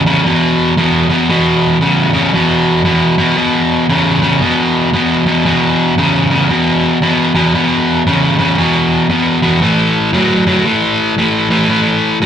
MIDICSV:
0, 0, Header, 1, 2, 480
1, 0, Start_track
1, 0, Tempo, 519931
1, 1191, Time_signature, 4, 2, 24, 8
1, 11317, End_track
2, 0, Start_track
2, 0, Title_t, "Overdriven electric guitar"
2, 0, Program_c, 0, 29
2, 58, Note_on_c, 0, 40, 78
2, 64, Note_on_c, 0, 49, 91
2, 215, Note_off_c, 0, 40, 0
2, 218, Note_off_c, 0, 49, 0
2, 230, Note_on_c, 0, 40, 91
2, 235, Note_on_c, 0, 47, 101
2, 675, Note_off_c, 0, 40, 0
2, 677, Note_off_c, 0, 47, 0
2, 714, Note_on_c, 0, 40, 73
2, 719, Note_on_c, 0, 47, 86
2, 985, Note_off_c, 0, 40, 0
2, 988, Note_off_c, 0, 47, 0
2, 1010, Note_on_c, 0, 40, 79
2, 1015, Note_on_c, 0, 47, 86
2, 1171, Note_off_c, 0, 40, 0
2, 1173, Note_off_c, 0, 47, 0
2, 1194, Note_on_c, 0, 40, 77
2, 1196, Note_on_c, 0, 47, 86
2, 1637, Note_off_c, 0, 40, 0
2, 1638, Note_off_c, 0, 47, 0
2, 1671, Note_on_c, 0, 40, 83
2, 1675, Note_on_c, 0, 49, 89
2, 1944, Note_off_c, 0, 40, 0
2, 1946, Note_off_c, 0, 49, 0
2, 1968, Note_on_c, 0, 40, 71
2, 1973, Note_on_c, 0, 49, 94
2, 2130, Note_off_c, 0, 40, 0
2, 2133, Note_off_c, 0, 49, 0
2, 2156, Note_on_c, 0, 40, 76
2, 2160, Note_on_c, 0, 47, 87
2, 2599, Note_off_c, 0, 40, 0
2, 2601, Note_off_c, 0, 47, 0
2, 2630, Note_on_c, 0, 40, 74
2, 2632, Note_on_c, 0, 47, 80
2, 2904, Note_off_c, 0, 40, 0
2, 2905, Note_off_c, 0, 47, 0
2, 2936, Note_on_c, 0, 40, 76
2, 2939, Note_on_c, 0, 47, 83
2, 3095, Note_off_c, 0, 40, 0
2, 3096, Note_off_c, 0, 47, 0
2, 3107, Note_on_c, 0, 40, 72
2, 3111, Note_on_c, 0, 47, 93
2, 3555, Note_off_c, 0, 40, 0
2, 3557, Note_off_c, 0, 47, 0
2, 3595, Note_on_c, 0, 40, 87
2, 3603, Note_on_c, 0, 49, 93
2, 3867, Note_off_c, 0, 40, 0
2, 3871, Note_off_c, 0, 49, 0
2, 3894, Note_on_c, 0, 40, 86
2, 3897, Note_on_c, 0, 49, 89
2, 4055, Note_off_c, 0, 40, 0
2, 4056, Note_off_c, 0, 49, 0
2, 4071, Note_on_c, 0, 40, 84
2, 4078, Note_on_c, 0, 47, 89
2, 4517, Note_off_c, 0, 40, 0
2, 4521, Note_off_c, 0, 47, 0
2, 4555, Note_on_c, 0, 40, 75
2, 4559, Note_on_c, 0, 47, 82
2, 4828, Note_off_c, 0, 40, 0
2, 4830, Note_off_c, 0, 47, 0
2, 4856, Note_on_c, 0, 40, 72
2, 4861, Note_on_c, 0, 47, 80
2, 5016, Note_off_c, 0, 40, 0
2, 5018, Note_off_c, 0, 47, 0
2, 5034, Note_on_c, 0, 40, 80
2, 5040, Note_on_c, 0, 47, 87
2, 5479, Note_off_c, 0, 40, 0
2, 5482, Note_off_c, 0, 47, 0
2, 5520, Note_on_c, 0, 40, 85
2, 5524, Note_on_c, 0, 49, 98
2, 5791, Note_off_c, 0, 40, 0
2, 5793, Note_off_c, 0, 49, 0
2, 5819, Note_on_c, 0, 40, 81
2, 5825, Note_on_c, 0, 49, 76
2, 5978, Note_off_c, 0, 40, 0
2, 5981, Note_off_c, 0, 49, 0
2, 5992, Note_on_c, 0, 40, 80
2, 5996, Note_on_c, 0, 47, 90
2, 6438, Note_off_c, 0, 40, 0
2, 6440, Note_off_c, 0, 47, 0
2, 6480, Note_on_c, 0, 40, 79
2, 6483, Note_on_c, 0, 47, 78
2, 6751, Note_off_c, 0, 40, 0
2, 6752, Note_off_c, 0, 47, 0
2, 6781, Note_on_c, 0, 40, 66
2, 6790, Note_on_c, 0, 47, 83
2, 6939, Note_off_c, 0, 40, 0
2, 6944, Note_off_c, 0, 47, 0
2, 6959, Note_on_c, 0, 40, 74
2, 6966, Note_on_c, 0, 47, 79
2, 7402, Note_off_c, 0, 40, 0
2, 7405, Note_off_c, 0, 47, 0
2, 7447, Note_on_c, 0, 40, 76
2, 7449, Note_on_c, 0, 49, 97
2, 7714, Note_off_c, 0, 40, 0
2, 7715, Note_off_c, 0, 49, 0
2, 7742, Note_on_c, 0, 40, 83
2, 7747, Note_on_c, 0, 49, 88
2, 7899, Note_off_c, 0, 40, 0
2, 7902, Note_off_c, 0, 49, 0
2, 7922, Note_on_c, 0, 40, 74
2, 7924, Note_on_c, 0, 47, 87
2, 8363, Note_off_c, 0, 40, 0
2, 8364, Note_off_c, 0, 47, 0
2, 8397, Note_on_c, 0, 40, 76
2, 8400, Note_on_c, 0, 47, 81
2, 8669, Note_off_c, 0, 40, 0
2, 8671, Note_off_c, 0, 47, 0
2, 8699, Note_on_c, 0, 40, 72
2, 8704, Note_on_c, 0, 47, 75
2, 8857, Note_off_c, 0, 40, 0
2, 8860, Note_off_c, 0, 47, 0
2, 8872, Note_on_c, 0, 45, 78
2, 8879, Note_on_c, 0, 52, 84
2, 9318, Note_off_c, 0, 45, 0
2, 9321, Note_off_c, 0, 52, 0
2, 9352, Note_on_c, 0, 45, 85
2, 9358, Note_on_c, 0, 54, 88
2, 9626, Note_off_c, 0, 45, 0
2, 9629, Note_off_c, 0, 54, 0
2, 9663, Note_on_c, 0, 45, 78
2, 9664, Note_on_c, 0, 54, 78
2, 9819, Note_off_c, 0, 45, 0
2, 9820, Note_off_c, 0, 54, 0
2, 9838, Note_on_c, 0, 45, 74
2, 9843, Note_on_c, 0, 52, 100
2, 10280, Note_off_c, 0, 45, 0
2, 10283, Note_off_c, 0, 52, 0
2, 10322, Note_on_c, 0, 45, 68
2, 10327, Note_on_c, 0, 52, 80
2, 10591, Note_off_c, 0, 45, 0
2, 10593, Note_off_c, 0, 52, 0
2, 10619, Note_on_c, 0, 45, 71
2, 10623, Note_on_c, 0, 52, 80
2, 10777, Note_off_c, 0, 45, 0
2, 10779, Note_off_c, 0, 52, 0
2, 10795, Note_on_c, 0, 45, 74
2, 10800, Note_on_c, 0, 52, 90
2, 11238, Note_off_c, 0, 45, 0
2, 11241, Note_off_c, 0, 52, 0
2, 11278, Note_on_c, 0, 45, 82
2, 11280, Note_on_c, 0, 54, 90
2, 11317, Note_off_c, 0, 45, 0
2, 11317, Note_off_c, 0, 54, 0
2, 11317, End_track
0, 0, End_of_file